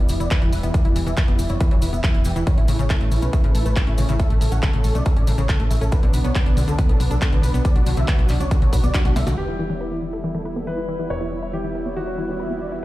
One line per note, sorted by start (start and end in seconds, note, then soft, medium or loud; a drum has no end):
0.00 5.88 E3 medium
0.00 2.43 G3 medium
0.00 2.43 B3 medium
0.09 0.18 E1 loud
0.09 0.16 E3 medium
0.09 0.18 E4 medium
0.09 open hi-hat loud
0.09 cabasa medium
0.20 0.29 E1 medium
0.20 0.27 E4 medium
0.20 0.29 D5 loud
0.20 closed hi-hat soft
0.20 cabasa medium
0.30 0.35 E3 loud
0.30 0.40 E4 medium
0.30 kick loud
0.30 clap loud
0.30 closed hi-hat medium
0.30 cabasa soft
0.42 0.51 E1 medium
0.42 0.51 E3 loud
0.42 0.51 E4 medium
0.42 closed hi-hat soft
0.53 0.61 E1 medium
0.53 0.62 B4 medium
0.53 0.61 E5 medium
0.53 open hi-hat loud
0.53 cabasa loud
0.63 0.72 E1 medium
0.63 0.70 B3 medium
0.63 0.72 E4 medium
0.63 closed hi-hat medium
0.63 cabasa medium
0.74 0.80 E3 medium
0.74 0.83 D5 loud
0.74 kick loud
0.74 closed hi-hat medium
0.74 cabasa soft
0.85 0.94 E1 medium
0.85 0.94 E4 medium
0.85 0.91 E4 medium
0.85 closed hi-hat soft
0.96 1.04 E1 loud
0.96 0.99 E3 loud
0.96 1.05 E4 medium
0.96 open hi-hat loud
0.96 cabasa medium
1.06 1.15 E1 medium
1.06 1.16 E3 loud
1.06 1.15 E5 medium
1.06 closed hi-hat soft
1.06 cabasa medium
1.17 1.26 E4 medium
1.17 1.27 B4 medium
1.17 kick loud
1.17 clap loud
1.17 closed hi-hat medium
1.17 cabasa soft
1.28 1.37 E1 medium
1.28 1.34 B3 medium
1.28 1.37 E4 medium
1.28 closed hi-hat medium
1.39 1.48 E1 medium
1.39 1.45 E3 medium
1.39 1.48 E4 medium
1.39 open hi-hat loud
1.39 cabasa medium
1.49 1.58 F#1 medium
1.49 1.56 E4 medium
1.49 1.59 C#5 medium
1.49 closed hi-hat medium
1.49 cabasa medium
1.60 1.64 E3 loud
1.60 1.69 E4 medium
1.60 kick loud
1.60 closed hi-hat medium
1.60 cabasa soft
1.71 1.80 E1 medium
1.71 1.81 E3 loud
1.71 1.80 C#5 medium
1.71 closed hi-hat medium
1.82 1.91 E1 loud
1.82 1.91 E4 medium
1.82 1.91 B4 medium
1.82 open hi-hat loud
1.82 cabasa medium
1.93 2.02 E1 medium
1.93 1.99 B3 medium
1.93 2.02 E5 medium
1.93 closed hi-hat soft
1.93 cabasa medium
2.04 2.10 E3 medium
2.04 2.13 E4 medium
2.04 kick loud
2.04 clap loud
2.04 closed hi-hat medium
2.04 cabasa soft
2.14 2.23 E1 medium
2.14 2.23 E4 medium
2.14 2.21 E4 medium
2.14 closed hi-hat soft
2.25 2.34 E1 loud
2.25 2.29 E3 loud
2.25 2.34 G5 medium
2.25 open hi-hat loud
2.25 cabasa medium
2.36 2.45 E1 medium
2.36 2.45 E3 loud
2.36 2.45 E4 medium
2.36 closed hi-hat medium
2.36 cabasa soft
2.47 2.53 C#3 medium
2.47 5.89 A3 medium
2.47 5.89 C#4 medium
2.47 2.56 C#5 loud
2.47 kick loud
2.47 closed hi-hat medium
2.47 cabasa soft
2.58 2.66 A1 medium
2.58 2.64 C#4 medium
2.58 2.67 E4 medium
2.58 closed hi-hat medium
2.68 2.77 A1 loud
2.68 2.72 C#3 loud
2.68 2.77 E4 medium
2.68 open hi-hat loud
2.68 cabasa medium
2.79 2.88 A1 medium
2.79 2.89 C#3 loud
2.79 2.88 C#5 medium
2.79 closed hi-hat soft
2.79 cabasa soft
2.90 2.99 E4 medium
2.90 2.99 A4 medium
2.90 kick loud
2.90 clap loud
2.90 closed hi-hat medium
2.90 cabasa soft
3.01 3.10 A1 medium
3.01 3.07 A3 medium
3.01 3.10 E4 medium
3.01 closed hi-hat medium
3.11 3.20 A1 loud
3.11 3.18 C#3 medium
3.11 3.20 E4 medium
3.11 open hi-hat loud
3.11 cabasa medium
3.22 3.31 B1 medium
3.22 3.29 C#4 medium
3.22 3.31 B4 medium
3.22 closed hi-hat medium
3.22 cabasa medium
3.33 3.37 C#3 loud
3.33 3.42 E4 medium
3.33 kick loud
3.33 closed hi-hat medium
3.33 cabasa soft
3.44 3.53 A1 medium
3.44 3.53 C#3 loud
3.44 3.53 B4 medium
3.44 closed hi-hat medium
3.55 3.63 A1 loud
3.55 3.64 E4 medium
3.55 3.64 A4 medium
3.55 open hi-hat loud
3.55 cabasa loud
3.65 3.74 A1 medium
3.65 3.72 A3 medium
3.65 3.74 B4 loud
3.65 closed hi-hat soft
3.65 cabasa medium
3.76 3.83 C#3 medium
3.76 3.85 E4 medium
3.76 kick loud
3.76 clap loud
3.76 closed hi-hat medium
3.76 cabasa soft
3.87 3.96 A1 medium
3.87 3.93 C#4 medium
3.87 3.96 E4 medium
3.87 closed hi-hat soft
3.98 4.07 A1 loud
3.98 4.02 C#3 loud
3.98 4.07 C#5 medium
3.98 open hi-hat loud
3.98 cabasa medium
4.09 4.17 A1 medium
4.09 4.18 C#3 loud
4.09 4.18 E4 medium
4.09 closed hi-hat medium
4.09 cabasa soft
4.19 4.29 A4 medium
4.19 4.28 E5 medium
4.19 kick loud
4.19 closed hi-hat medium
4.19 cabasa soft
4.30 4.39 A1 medium
4.30 4.36 A3 medium
4.30 4.39 A4 medium
4.30 closed hi-hat medium
4.41 4.50 A1 loud
4.41 4.47 C#3 medium
4.41 4.50 A4 medium
4.41 open hi-hat loud
4.41 cabasa medium
4.52 4.61 A1 medium
4.52 4.58 C#4 medium
4.52 4.61 F#5 medium
4.52 closed hi-hat medium
4.52 cabasa medium
4.63 4.66 C#3 loud
4.63 4.71 A4 medium
4.63 kick loud
4.63 clap loud
4.63 closed hi-hat medium
4.63 cabasa soft
4.73 4.82 A1 medium
4.73 4.83 C#3 loud
4.73 4.82 A4 medium
4.73 closed hi-hat medium
4.84 4.93 A1 loud
4.84 4.93 A4 medium
4.84 4.94 A4 medium
4.84 open hi-hat loud
4.84 cabasa medium
4.95 5.04 B1 medium
4.95 5.01 A3 medium
4.95 5.04 D5 medium
4.95 closed hi-hat medium
4.95 cabasa medium
5.05 5.12 C#3 medium
5.05 5.15 A4 medium
5.05 kick loud
5.05 closed hi-hat medium
5.05 cabasa soft
5.16 5.25 A1 medium
5.16 5.23 C#4 medium
5.16 5.25 D5 medium
5.16 closed hi-hat medium
5.27 5.36 A1 loud
5.27 5.31 C#3 loud
5.27 5.36 A4 medium
5.27 open hi-hat loud
5.27 cabasa medium
5.38 5.47 A1 medium
5.38 5.47 C#3 loud
5.38 5.47 C#5 loud
5.38 closed hi-hat medium
5.38 cabasa soft
5.49 5.58 A4 medium
5.49 kick loud
5.49 clap loud
5.49 closed hi-hat medium
5.49 cabasa soft
5.60 5.69 A1 medium
5.60 5.66 A3 medium
5.60 5.69 A4 medium
5.60 closed hi-hat soft
5.70 5.79 A1 loud
5.70 5.77 C#3 medium
5.70 5.79 E5 medium
5.70 open hi-hat loud
5.70 cabasa medium
5.81 5.90 A1 medium
5.81 5.88 C#4 medium
5.81 5.90 A4 medium
5.81 closed hi-hat medium
5.81 cabasa soft
5.92 5.96 D3 loud
5.92 9.34 F#3 medium
5.92 9.34 B3 medium
5.92 9.34 D4 medium
5.92 6.01 B4 loud
5.92 kick loud
5.92 closed hi-hat medium
5.92 cabasa soft
6.03 6.12 B1 medium
6.03 6.12 D3 loud
6.03 6.12 B3 medium
6.03 closed hi-hat medium
6.14 6.23 B1 loud
6.14 6.23 B3 medium
6.14 6.23 B4 medium
6.14 open hi-hat medium
6.14 cabasa medium
6.24 6.33 B1 medium
6.24 6.31 B3 medium
6.24 6.33 C#5 medium
6.24 closed hi-hat medium
6.24 cabasa soft
6.35 6.42 D3 medium
6.35 6.44 B3 medium
6.35 kick loud
6.35 clap loud
6.35 closed hi-hat medium
6.35 cabasa soft
6.46 6.55 B1 medium
6.46 6.55 B3 medium
6.46 6.52 D4 medium
6.46 closed hi-hat medium
6.57 6.66 B1 loud
6.57 6.61 D3 loud
6.57 6.66 B3 medium
6.57 open hi-hat loud
6.57 cabasa medium
6.68 6.76 C#2 medium
6.68 6.77 D3 loud
6.68 6.77 A4 medium
6.68 closed hi-hat medium
6.68 cabasa medium
6.78 6.87 B3 medium
6.78 6.88 B4 medium
6.78 kick loud
6.78 closed hi-hat medium
6.78 cabasa soft
6.89 6.98 B1 medium
6.89 6.95 B3 medium
6.89 6.98 A4 medium
6.89 closed hi-hat medium
7.00 7.09 B1 loud
7.00 7.06 D3 medium
7.00 7.09 B3 medium
7.00 open hi-hat loud
7.00 cabasa medium
7.11 7.20 B1 medium
7.11 7.17 D4 medium
7.11 7.20 A4 medium
7.11 closed hi-hat medium
7.11 cabasa soft
7.22 7.25 D3 loud
7.22 7.30 B3 medium
7.22 kick loud
7.22 clap loud
7.22 closed hi-hat medium
7.22 cabasa soft
7.32 7.41 B1 medium
7.32 7.42 D3 loud
7.32 7.41 B3 medium
7.32 closed hi-hat medium
7.43 7.52 B1 loud
7.43 7.52 B4 medium
7.43 7.53 B4 medium
7.43 open hi-hat loud
7.43 cabasa medium
7.54 7.63 B1 medium
7.54 7.63 B3 medium
7.54 7.60 B3 medium
7.54 closed hi-hat medium
7.54 cabasa soft
7.65 7.71 D3 medium
7.65 7.74 D5 loud
7.65 kick loud
7.65 closed hi-hat medium
7.65 cabasa soft
7.76 7.84 B1 medium
7.76 7.82 D4 medium
7.76 7.84 F#4 medium
7.76 closed hi-hat medium
7.86 7.95 B1 loud
7.86 7.90 D3 loud
7.86 7.95 F#4 medium
7.86 open hi-hat loud
7.86 cabasa medium
7.97 8.06 B1 medium
7.97 8.07 D3 loud
7.97 8.06 E5 loud
7.97 closed hi-hat medium
7.97 cabasa soft
8.08 8.17 F#4 medium
8.08 8.17 B4 medium
8.08 kick loud
8.08 clap loud
8.08 closed hi-hat medium
8.08 cabasa soft
8.19 8.27 B1 medium
8.19 8.25 B3 medium
8.19 8.28 F#4 medium
8.19 closed hi-hat medium
8.29 8.38 B1 loud
8.29 8.36 D3 medium
8.29 8.38 F#4 medium
8.29 clap soft
8.29 open hi-hat loud
8.29 cabasa medium
8.40 8.49 C#2 medium
8.40 8.47 D4 medium
8.40 8.49 C#5 medium
8.40 closed hi-hat medium
8.40 cabasa medium
8.51 8.55 D3 loud
8.51 8.60 F#4 medium
8.51 kick loud
8.51 closed hi-hat medium
8.51 cabasa soft
8.62 8.71 B1 medium
8.62 8.71 D3 loud
8.62 8.71 C#5 medium
8.62 closed hi-hat medium
8.73 8.81 B1 loud
8.73 8.82 F#4 medium
8.73 8.82 B4 medium
8.73 kick medium
8.73 open hi-hat loud
8.73 cabasa medium
8.84 8.92 B1 medium
8.84 8.90 B3 medium
8.84 8.92 D5 loud
8.84 closed hi-hat medium
8.84 cabasa medium
8.94 9.01 D3 medium
8.94 9.03 F#4 medium
8.94 kick loud
8.94 clap loud
8.94 closed hi-hat medium
8.94 cabasa soft
9.05 9.14 B1 medium
9.05 9.11 D4 medium
9.05 9.14 F#4 medium
9.05 snare medium
9.05 closed hi-hat medium
9.16 9.25 B1 loud
9.16 9.20 D3 loud
9.16 9.25 E5 medium
9.16 snare medium
9.16 open hi-hat loud
9.16 cabasa medium
9.27 9.35 B1 medium
9.27 9.36 D3 loud
9.27 9.36 F#4 medium
9.27 snare medium
9.27 closed hi-hat medium
9.27 cabasa medium
9.37 11.08 E1 medium
9.37 9.44 E3 medium
9.37 12.85 G3 medium
9.37 12.85 B3 medium
9.37 12.85 E4 medium
9.37 9.94 G4 medium
9.37 9.46 B4 medium
9.37 crash medium
9.48 9.57 E4 medium
9.48 9.54 E4 medium
9.59 9.63 E3 loud
9.59 9.68 E4 medium
9.70 9.79 E3 medium
9.70 9.79 C#5 medium
9.81 9.90 E4 medium
9.81 9.90 B4 medium
9.92 9.98 B3 medium
9.92 10.00 E4 medium
10.02 10.08 E3 medium
10.02 10.11 E4 medium
10.13 10.19 E4 medium
10.13 10.22 A4 medium
10.24 10.28 E3 medium
10.24 10.33 E4 medium
10.35 10.44 E3 medium
10.35 10.44 A4 medium
10.46 10.54 E4 medium
10.46 10.55 B4 medium
10.56 10.62 B3 medium
10.56 10.65 A4 medium
10.67 10.73 E3 medium
10.67 10.76 E4 medium
10.67 11.08 B4 medium
10.78 10.87 E4 medium
10.78 10.84 E4 medium
10.89 10.92 E3 medium
10.89 10.97 B4 medium
10.99 11.09 E3 medium
10.99 11.08 E4 medium
11.10 12.81 E1 medium
11.10 11.19 B4 medium
11.10 11.51 C#5 medium
11.10 11.19 D5 medium
11.21 11.27 B3 medium
11.21 11.30 E4 medium
11.32 11.38 E3 medium
11.32 11.41 E4 medium
11.42 11.49 E4 medium
11.42 11.51 E5 medium
11.53 11.57 E3 medium
11.53 11.62 E4 medium
11.53 11.94 G4 medium
11.64 11.73 E3 medium
11.64 11.73 E4 medium
11.75 11.84 E4 medium
11.75 11.84 B4 medium
11.86 11.92 B3 medium
11.86 11.95 C#5 medium
11.96 12.03 E3 medium
11.96 12.05 E4 medium
11.96 12.74 F#4 medium
12.07 12.14 E4 medium
12.07 12.16 C#5 medium
12.18 12.22 E3 medium
12.18 12.27 E4 medium
12.29 12.38 E3 medium
12.29 12.38 C#5 medium
12.40 12.48 E4 medium
12.40 12.49 B4 medium
12.50 12.57 B3 medium
12.50 12.59 E4 medium
12.61 12.67 E3 medium
12.61 12.70 D5 medium
12.72 12.81 E4 medium
12.72 12.78 E4 medium